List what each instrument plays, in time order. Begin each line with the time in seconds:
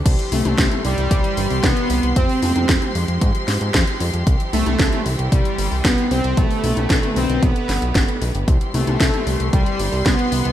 0.05 analog synth bass C2, string section C3 E3 G3 G4 C6, kick, closed hi-hat, crash
0.19 closed hi-hat
0.32 analog synth bass C2, analog polysynth A3, open hi-hat, high tom
0.45 analog synth bass C2, closed hi-hat, high tom
0.58 analog synth bass C2, kick, snare, closed hi-hat
0.71 closed hi-hat, high tom
0.85 analog synth bass C2, analog polysynth G3, open hi-hat
0.98 analog synth bass C2, closed hi-hat
1.11 analog synth bass C2, kick, closed hi-hat
1.24 closed hi-hat
1.37 analog synth bass G1, open hi-hat
1.50 analog synth bass C2, open hi-hat
1.64 analog synth bass C2, analog polysynth B3, kick, snare, closed hi-hat
1.77 closed hi-hat
1.90 analog synth bass C2, open hi-hat
2.03 analog synth bass C2, closed hi-hat
2.16 analog synth bass F2, string section F3 G#3, analog polysynth C4, kick, closed hi-hat
2.29 open hi-hat
2.42 analog synth bass F2, analog polysynth C4, open hi-hat, high tom
2.56 analog synth bass F2, closed hi-hat, high tom
2.69 analog synth bass F2, kick, snare, closed hi-hat
2.82 closed hi-hat, high tom
2.95 analog synth bass F2, open hi-hat
3.08 analog synth bass F2, closed hi-hat
3.21 analog synth bass G#2, kick, closed hi-hat
3.35 closed hi-hat
3.48 analog synth bass G#2, snare, open hi-hat
3.61 analog synth bass G#2, closed hi-hat
3.74 analog synth bass F2, kick, snare, closed hi-hat
3.87 closed hi-hat
4.00 analog synth bass F2, open hi-hat
4.14 analog synth bass F2, closed hi-hat
4.27 analog synth bass C2, string section E3 G3, kick, closed hi-hat
4.40 closed hi-hat
4.53 analog synth bass C2, analog polysynth A3, open hi-hat, high tom
4.66 analog synth bass C2, closed hi-hat, high tom
4.79 analog synth bass C2, kick, snare, closed hi-hat
4.93 closed hi-hat, high tom
5.06 analog synth bass C2, open hi-hat
5.19 analog synth bass C2, closed hi-hat
5.32 analog synth bass C2, analog polysynth G3, kick, closed hi-hat
5.45 closed hi-hat
5.58 analog synth bass G1, open hi-hat
5.71 analog synth bass C2, open hi-hat
5.85 analog synth bass C2, analog polysynth B3, kick, snare, closed hi-hat
5.98 closed hi-hat
6.11 analog synth bass C2, analog polysynth C4, open hi-hat
6.24 analog synth bass C2, closed hi-hat
6.37 analog synth bass B1, string section D3 A3 B3 B4, analog polysynth A3, kick, closed hi-hat
6.51 open hi-hat
6.64 analog synth bass B1, open hi-hat, high tom
6.77 analog synth bass B1, closed hi-hat, high tom
6.90 analog synth bass B1, kick, snare, closed hi-hat
7.03 closed hi-hat, high tom
7.16 analog synth bass B1, analog polysynth C4, open hi-hat
7.29 analog synth bass B1, closed hi-hat
7.43 analog synth bass B1, analog polysynth B3, kick, closed hi-hat
7.56 closed hi-hat
7.69 analog synth bass G1, snare, open hi-hat
7.82 analog synth bass B1, closed hi-hat
7.95 analog synth bass G1, kick, snare, closed hi-hat
8.08 closed hi-hat
8.21 analog synth bass B1, open hi-hat
8.35 analog synth bass G1, closed hi-hat
8.48 analog synth bass C2, string section C3 E3 G3 C6, kick, closed hi-hat
8.61 closed hi-hat
8.74 analog synth bass C2, analog polysynth A3, open hi-hat, high tom
8.87 analog synth bass C2, closed hi-hat, high tom
9.00 analog synth bass C2, kick, snare, closed hi-hat
9.14 closed hi-hat, high tom
9.27 analog synth bass C2, open hi-hat
9.40 analog synth bass C2, closed hi-hat
9.53 analog synth bass C2, analog polysynth G3, kick, closed hi-hat
9.66 closed hi-hat
9.79 analog synth bass G1, open hi-hat
9.93 analog synth bass C2, open hi-hat
10.06 analog synth bass C2, analog polysynth B3, kick, snare, closed hi-hat
10.19 closed hi-hat
10.32 analog synth bass C2, open hi-hat
10.45 analog synth bass C2, closed hi-hat